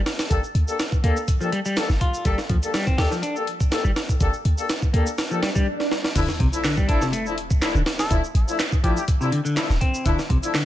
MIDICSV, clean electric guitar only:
0, 0, Header, 1, 2, 480
1, 0, Start_track
1, 0, Key_signature, -1, "minor"
1, 0, Tempo, 487805
1, 299, Time_signature, 4, 2, 24, 8
1, 10480, End_track
2, 0, Start_track
2, 0, Title_t, "Clean electric guitar"
2, 0, Program_c, 0, 27
2, 1022, Note_on_c, 0, 58, 78
2, 1142, Note_off_c, 0, 58, 0
2, 1384, Note_on_c, 0, 53, 75
2, 1477, Note_off_c, 0, 53, 0
2, 1499, Note_on_c, 0, 55, 102
2, 1562, Note_off_c, 0, 55, 0
2, 1630, Note_on_c, 0, 55, 93
2, 1735, Note_off_c, 0, 55, 0
2, 1978, Note_on_c, 0, 65, 73
2, 2207, Note_off_c, 0, 65, 0
2, 2220, Note_on_c, 0, 55, 77
2, 2341, Note_off_c, 0, 55, 0
2, 2457, Note_on_c, 0, 53, 73
2, 2521, Note_off_c, 0, 53, 0
2, 2697, Note_on_c, 0, 55, 105
2, 2803, Note_off_c, 0, 55, 0
2, 2822, Note_on_c, 0, 60, 74
2, 2917, Note_off_c, 0, 60, 0
2, 2932, Note_on_c, 0, 67, 76
2, 3041, Note_off_c, 0, 67, 0
2, 3065, Note_on_c, 0, 53, 76
2, 3167, Note_off_c, 0, 53, 0
2, 3173, Note_on_c, 0, 62, 79
2, 3298, Note_off_c, 0, 62, 0
2, 3782, Note_on_c, 0, 55, 76
2, 3840, Note_off_c, 0, 55, 0
2, 4856, Note_on_c, 0, 58, 75
2, 4979, Note_off_c, 0, 58, 0
2, 5225, Note_on_c, 0, 53, 74
2, 5318, Note_off_c, 0, 53, 0
2, 5337, Note_on_c, 0, 55, 97
2, 5401, Note_off_c, 0, 55, 0
2, 5465, Note_on_c, 0, 55, 98
2, 5573, Note_off_c, 0, 55, 0
2, 6056, Note_on_c, 0, 50, 80
2, 6179, Note_off_c, 0, 50, 0
2, 6298, Note_on_c, 0, 48, 77
2, 6362, Note_off_c, 0, 48, 0
2, 6537, Note_on_c, 0, 50, 108
2, 6643, Note_off_c, 0, 50, 0
2, 6663, Note_on_c, 0, 55, 73
2, 6757, Note_off_c, 0, 55, 0
2, 6774, Note_on_c, 0, 62, 79
2, 6882, Note_off_c, 0, 62, 0
2, 6899, Note_on_c, 0, 48, 78
2, 7004, Note_off_c, 0, 48, 0
2, 7010, Note_on_c, 0, 57, 80
2, 7136, Note_off_c, 0, 57, 0
2, 7621, Note_on_c, 0, 50, 76
2, 7680, Note_off_c, 0, 50, 0
2, 8694, Note_on_c, 0, 53, 76
2, 8818, Note_off_c, 0, 53, 0
2, 9060, Note_on_c, 0, 48, 73
2, 9156, Note_off_c, 0, 48, 0
2, 9169, Note_on_c, 0, 50, 105
2, 9237, Note_off_c, 0, 50, 0
2, 9297, Note_on_c, 0, 50, 98
2, 9409, Note_off_c, 0, 50, 0
2, 9651, Note_on_c, 0, 60, 75
2, 9884, Note_off_c, 0, 60, 0
2, 9896, Note_on_c, 0, 50, 77
2, 10019, Note_off_c, 0, 50, 0
2, 10135, Note_on_c, 0, 48, 76
2, 10200, Note_off_c, 0, 48, 0
2, 10373, Note_on_c, 0, 50, 104
2, 10480, Note_off_c, 0, 50, 0
2, 10480, End_track
0, 0, End_of_file